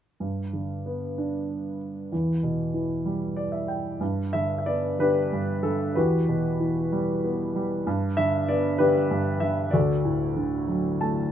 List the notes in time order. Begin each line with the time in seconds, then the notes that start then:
0.20 G2
0.53 D3
0.86 B3
1.18 D4
2.12 E2
2.43 B2
2.74 E3
3.05 G3
3.36 D5
3.52 E5
3.68 G5
4.01 G2
4.33 D3 E5
4.58 E5
4.66 B3 D5
4.99 D3 D4 G4 B4
5.33 G2
5.63 D3 A4
5.95 E2 F#4 G4 B4
6.28 B2
6.60 E3
6.92 G3
7.24 B3
7.55 G3
7.87 G2
8.17 D3 E5
8.48 B3 D5
8.78 D3 D4 G4 B4
9.11 G2
9.40 D3 E5
9.71 D2 F#4 A4 D5
10.05 A2
10.36 D3
10.67 F#3
11.01 A3 A5